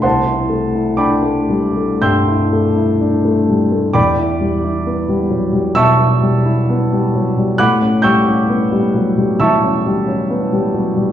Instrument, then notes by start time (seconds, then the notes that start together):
grand piano
0.02 C2 C5 F#5 A5 C6
0.26 E4
0.50 A3
0.75 E4
0.97 D4 D5 G5 B5 D6
1.22 A3
1.50 G3
1.77 A3
2.02 G2 G5 C6 E6 G6
2.27 E4
2.53 A3
2.76 E4
3.00 D4
3.25 A3
3.49 G3
3.72 A3
3.93 E2 D5 G5 B5 D6
4.19 E4
4.41 G3
4.64 E4
4.86 B3
5.09 G3
5.30 F#3
5.53 G3
5.75 B2 E5 A5 C#6 E6
5.99 E4
6.22 G3
6.45 E4
6.70 B3
6.93 G3
7.15 F#3
7.37 G3
7.58 A2 F#5 B5 D6 F#6
7.82 C#4
8.02 G3 G5 C#6 E6 G6
8.26 C#4
8.49 B3
8.72 G3
8.94 F#3
9.18 G3
9.40 E3 E5 A5 C#6 E6
9.64 C#4
9.86 G3
10.08 C#4
10.30 B3
10.53 G3
10.74 F#3
10.97 G3